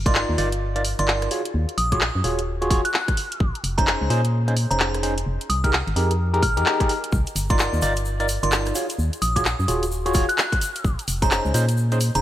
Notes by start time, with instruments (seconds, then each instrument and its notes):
Already playing: fm bass G1
0.06 tine electric piano D#4 F4 A#4 D5, synth bell C6, kick, cross-stick, closed hi-hat
0.15 synth bell C6, clap
0.29 fm bass D#2
0.38 fm bass G1, tine electric piano D#4 F4 A#4 D5, open hi-hat
0.52 closed hi-hat
0.76 tine electric piano D#4 F4 A#4 D5, closed hi-hat
0.85 open hi-hat
0.99 fm bass G1, tine electric piano D#4 F4 A#4 D5, synth bell C6, closed hi-hat
1.08 clap
1.22 cross-stick, closed hi-hat
1.31 tine electric piano F4 F#4 G#4 C#5, open hi-hat
1.45 closed hi-hat
1.54 fm bass D#2
1.69 closed hi-hat
1.78 fm bass A#1, synth bell D#6, open hi-hat
1.92 tine electric piano F4 F#4 G#4 C#5, synth bell D#6, kick, cross-stick, closed hi-hat
2.01 clap
2.15 fm bass F#2
2.24 fm bass D#1, tine electric piano F4 F#4 G#4 C#5, open hi-hat
2.39 closed hi-hat
2.62 tine electric piano F4 F#4 G#4 C#5, closed hi-hat
2.70 tine electric piano F4 F#4 G#4 C#5, kick, open hi-hat
2.85 synth bell F#6, closed hi-hat
2.94 clap
3.08 kick, cross-stick, closed hi-hat
3.17 open hi-hat
3.32 closed hi-hat
3.40 fm bass A#1, kick
3.55 closed hi-hat
3.64 fm bass F1, open hi-hat
3.78 tine electric piano C#4 D#4 G#4 C5, synth bell A#5, kick, cross-stick, closed hi-hat
3.87 synth bell A#5, clap
4.01 fm bass C#2
4.10 fm bass A#2, tine electric piano C#4 D#4 G#4 C5, open hi-hat
4.25 closed hi-hat
4.48 tine electric piano C#4 D#4 G#4 C5, closed hi-hat
4.57 open hi-hat
4.71 fm bass F1, tine electric piano C#4 D#4 G#4 C5, synth bell A#5, closed hi-hat
4.80 clap
4.95 cross-stick, closed hi-hat
5.03 tine electric piano C#4 D#4 G#4 C5, open hi-hat
5.18 closed hi-hat
5.26 fm bass F1
5.41 closed hi-hat
5.49 fm bass C2, synth bell D#6, open hi-hat
5.64 tine electric piano D#4 G4 G#4 A#4, synth bell F6, kick, cross-stick, closed hi-hat
5.73 clap
5.87 fm bass G#1, closed hi-hat
5.96 fm bass F2, tine electric piano D#4 G4 G#4 A#4, open hi-hat
6.11 closed hi-hat
6.34 tine electric piano D#4 G4 G#4 A#4, closed hi-hat
6.43 fm bass A#1, synth bell F6, kick, open hi-hat
6.57 fm bass F2, tine electric piano D#4 G4 G#4 A#4, closed hi-hat
6.66 tine electric piano D#4 G4 G#4 A#4, clap
6.80 tine electric piano D#4 G4 G#4 A#4, kick, cross-stick, closed hi-hat
6.89 open hi-hat
7.04 closed hi-hat
7.12 fm bass C2, kick, shaker
7.27 closed hi-hat, shaker
7.36 fm bass G1, open hi-hat, shaker
7.49 tine electric piano D#4 F4 A#4 D5, synth bell C6, kick, cross-stick, closed hi-hat, shaker
7.59 synth bell C6, clap, shaker
7.73 fm bass D#2, shaker
7.82 fm bass G1, tine electric piano D#4 F4 A#4 D5, open hi-hat, shaker
7.96 closed hi-hat, shaker
8.05 shaker
8.20 tine electric piano D#4 F4 A#4 D5, closed hi-hat, shaker
8.29 open hi-hat, shaker
8.43 fm bass G1, tine electric piano D#4 F4 A#4 D5, synth bell C6, closed hi-hat, shaker
8.52 clap, shaker
8.66 cross-stick, closed hi-hat, shaker
8.75 tine electric piano F4 F#4 G#4 C#5, open hi-hat, shaker
8.89 closed hi-hat, shaker
8.98 fm bass D#2, shaker
9.13 closed hi-hat, shaker
9.22 fm bass A#1, synth bell D#6, open hi-hat, shaker
9.36 tine electric piano F4 F#4 G#4 C#5, synth bell D#6, kick, cross-stick, closed hi-hat, shaker
9.45 clap, shaker
9.59 fm bass F#2, shaker
9.68 fm bass D#1, tine electric piano F4 F#4 G#4 C#5, open hi-hat, shaker
9.83 closed hi-hat, shaker
9.91 shaker
10.06 tine electric piano F4 F#4 G#4 C#5, closed hi-hat, shaker
10.14 tine electric piano F4 F#4 G#4 C#5, kick, open hi-hat, shaker
10.29 synth bell F#6, closed hi-hat, shaker
10.38 clap, shaker
10.52 kick, cross-stick, closed hi-hat, shaker
10.61 open hi-hat, shaker
10.75 closed hi-hat, shaker
10.84 fm bass A#1, kick, shaker
10.99 closed hi-hat, shaker
11.08 fm bass F1, open hi-hat, shaker
11.22 tine electric piano C#4 D#4 G#4 C5, synth bell A#5, kick, cross-stick, closed hi-hat, shaker
11.31 synth bell A#5, clap, shaker
11.45 fm bass C#2, shaker
11.54 fm bass A#2, tine electric piano C#4 D#4 G#4 C5, open hi-hat, shaker
11.69 closed hi-hat, shaker
11.77 shaker
11.92 tine electric piano C#4 D#4 G#4 C5, closed hi-hat, shaker
12.01 open hi-hat, shaker
12.15 fm bass F1, tine electric piano C#4 D#4 G#4 C5, synth bell A#5, closed hi-hat, shaker